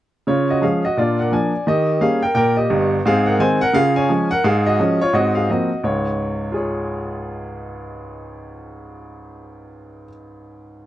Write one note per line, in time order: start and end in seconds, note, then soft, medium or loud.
0.27 0.57 C#3 medium
0.27 0.48 F4 soft
0.27 0.49 C#5 medium
0.50 0.63 F#4 soft
0.50 0.63 D#5 medium
0.62 0.81 F3 soft
0.62 0.81 G#3 soft
0.62 0.82 C#4 soft
0.62 0.83 G#4 soft
0.62 0.84 F5 medium
0.85 0.97 F#4 medium
0.85 0.97 D#5 medium
0.97 1.26 A#2 medium
0.97 1.18 D4 soft
0.97 1.18 F4 medium
0.97 1.19 D5 medium
1.19 1.32 A#4 soft
1.19 1.32 F#5 medium
1.32 1.51 F3 soft
1.32 1.51 A#3 soft
1.32 1.52 D4 soft
1.32 1.65 D5 soft
1.32 1.67 G#5 medium
1.67 1.96 D#3 medium
1.67 2.00 G4 medium
1.67 2.02 D#5 medium
2.00 2.19 G3 soft
2.00 2.20 A#3 soft
2.00 2.20 C#4 soft
2.00 2.22 G#4 medium
2.00 2.22 F5 medium
2.23 2.35 A#4 medium
2.23 2.33 G5 medium
2.34 2.64 A#2 medium
2.34 2.56 A#4 medium
2.34 2.56 G5 medium
2.57 2.89 G4 medium
2.57 2.91 D#5 medium
2.70 2.98 G1 medium
2.70 2.98 G2 medium
3.05 3.34 G#2 medium
3.05 3.26 C4 medium
3.05 3.26 G#4 medium
3.05 3.27 F5 medium
3.26 3.39 A#4 medium
3.26 3.39 F#5 medium
3.39 3.58 D#3 soft
3.39 3.58 G#3 medium
3.39 3.59 C4 medium
3.39 3.60 C5 medium
3.39 3.61 G#5 medium
3.61 3.74 A#4 medium
3.61 3.74 F#5 loud
3.73 4.03 C#3 medium
3.73 3.94 F4 medium
3.73 3.95 G#4 medium
3.73 3.95 F5 loud
3.96 4.28 C#5 medium
3.96 4.30 G#5 medium
4.09 4.28 F3 soft
4.09 4.28 G#3 soft
4.09 4.29 C#4 soft
4.31 4.44 A#4 medium
4.31 4.44 F#5 medium
4.44 4.73 G#2 medium
4.44 4.65 G#4 medium
4.44 4.65 F5 medium
4.66 4.98 F#4 medium
4.66 5.00 D#5 medium
4.79 4.98 F3 soft
4.79 4.99 G#3 soft
4.79 4.99 C#4 medium
5.01 5.14 F4 medium
5.01 5.14 C#5 medium
5.13 5.43 G#2 medium
5.13 5.34 C4 soft
5.13 5.34 F#4 medium
5.13 5.35 D#5 medium
5.35 5.48 G#4 medium
5.35 5.48 F5 medium
5.49 5.68 F3 soft
5.49 5.68 A#3 soft
5.49 5.68 C4 soft
5.49 5.82 F#4 soft
5.49 5.84 D#5 medium
5.84 10.05 C#2 medium
5.84 10.05 G#2 soft
5.84 6.54 C#5 medium
6.52 10.07 F4 soft
6.52 10.09 G#4 soft
6.56 10.10 C#5 soft